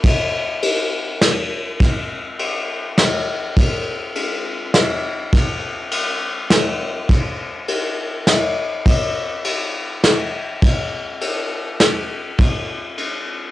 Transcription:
0.04 kick, ride
0.62 ride
1.21 snare, ride
1.80 kick, ride
2.39 ride
2.98 snare, ride
3.57 kick, ride
4.15 ride
4.74 snare, ride
5.33 kick, ride
5.91 ride
6.50 snare, ride
7.09 kick, ride
7.68 ride
8.27 snare, ride
8.86 kick, ride
9.45 ride
10.04 snare, ride
10.62 kick, ride
11.21 ride
11.80 snare, ride
12.38 kick, ride
12.98 ride

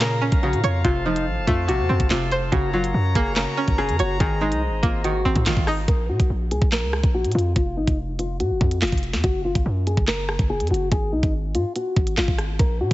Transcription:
Already playing: A#2 F3 A#3 A#4 C#5 F5 A#5
0.01 C#3 A#4, snare, clap, closed hi-hat
0.22 C#4
0.32 A#1, kick, closed hi-hat
0.43 C#3 F#4
0.53 A#2, closed hi-hat
0.63 F2 F4 C#5, closed hi-hat
0.84 F1 C3 F4 A4 C5 A5, kick, closed hi-hat
1.06 F3 D#4
1.16 closed hi-hat
1.27 A1
1.37 F1
1.47 F2 A3 F4, kick, closed hi-hat
1.68 A1 C3 F#4, closed hi-hat
1.79 F2
1.89 F2 C4
2.00 F1, kick, closed hi-hat
2.10 F1 C3 F4, snare, clap, closed hi-hat
2.32 C5, closed hi-hat
2.52 F#1 C#3 F#4 A#4 C#5 A#5, kick, closed hi-hat
2.73 F#3 F4
2.84 closed hi-hat
2.94 F#2
3.15 F#1 A#3 G#4, kick, closed hi-hat
3.36 C#3 A#4, snare, clap, closed hi-hat
3.57 C#4
3.68 F#1, kick, closed hi-hat
3.78 C#3 G#4
3.89 F#2, closed hi-hat
3.99 F#1 F#4 C#5, closed hi-hat
4.20 G#1 D#3 G#4 C5 D#5, kick, closed hi-hat
4.41 G#3 D#4
4.52 C2, closed hi-hat
4.67 G#1
4.83 G#1 A#3 F4, kick, closed hi-hat
5.04 D#3 F#4, closed hi-hat
5.25 G#1 C4
5.36 G#2, kick, closed hi-hat
5.46 G#1 D#3 F4, snare, clap, closed hi-hat
5.57 G#1, kick
5.67 D#4, cross-stick, open hi-hat
5.88 A#1 A#4, kick, closed hi-hat
6.09 A#2 F#4
6.20 A#1, kick, closed hi-hat
6.30 A#1
6.51 C#2 G#4, closed hi-hat
6.62 A#1, kick
6.72 A#4, snare, clap, closed hi-hat
6.83 C#2
6.93 cross-stick
7.04 A#1, kick, closed hi-hat
7.14 F#4
7.24 A#2, closed hi-hat
7.32 F2 F4, closed hi-hat
7.39 closed hi-hat
7.56 F1 F4, kick, closed hi-hat
7.77 A1 D#4
7.87 F1, kick, closed hi-hat
8.19 F4, closed hi-hat
8.40 A2 F#4, closed hi-hat
8.50 F1
8.61 F2, kick
8.71 closed hi-hat
8.82 F1 F4, snare, clap, closed hi-hat
8.87 closed hi-hat
8.92 F1, kick, closed hi-hat
8.98 closed hi-hat
9.03 closed hi-hat
9.13 F2, snare
9.24 F#1 F#4, kick, closed hi-hat
9.45 F4
9.55 F#1, kick, closed hi-hat
9.66 F#2
9.87 G#4, closed hi-hat
9.97 F#1, kick
10.08 A#4, snare, clap, closed hi-hat
10.29 cross-stick
10.39 F#1, kick, closed hi-hat
10.50 G#4
10.60 F#2, closed hi-hat
10.67 F#1 F#4, closed hi-hat
10.74 closed hi-hat
10.92 G#1 G#4, kick, closed hi-hat
11.12 C2 D#4
11.23 G#1, kick, closed hi-hat
11.55 G#2 F4, closed hi-hat
11.76 F#4, closed hi-hat
11.96 G#1, kick
12.07 closed hi-hat
12.17 G#1 F4, snare, clap, closed hi-hat
12.28 G#1, kick
12.38 cross-stick, closed hi-hat
12.59 A#1 A#4, kick, closed hi-hat
12.80 A#2 F#4

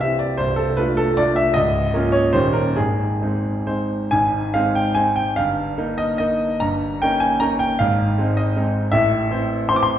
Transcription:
Already playing: C1 C2
0.01 E3 C4 G4 E5
0.19 D5
0.38 C1 C2 C5
0.56 A4
0.77 A3 D4 F4 B4
0.97 A4
1.17 A3 D4 F4 D5
1.36 E5
1.54 C#1 C#2 D#5
1.94 A#3 C#4 F4
2.12 C#5
2.33 D#1 D#2 G3 C#4 D#4 C5
2.53 A#4
2.76 G#1 G#2 G#4
3.22 G#3 C4 D#4
3.67 G#3 C4 D#4 C5
4.11 G#1 G#2 G#5
4.54 G#3 C4 D#4 F5
4.75 G5
4.95 G#3 C4 D#4 G#5
5.16 G5
5.36 G1 G2 F5
5.78 A#3 D#4
5.98 D#5
6.18 A#3 D#4 D#5
6.60 G1 G2 A#5
7.02 A#3 C#4 D#4 G5
7.20 G#5
7.40 A#3 C#4 D#4 A#5
7.59 G5
7.79 G#1 G#2 F5
8.18 G#3 C4 D#4
8.37 D#5
8.56 G#3 C4 D#4
8.92 A1 A2 E5
9.31 E3 C4 C5
9.69 E3 C4 C5 C6
9.76 D6
9.83 C6

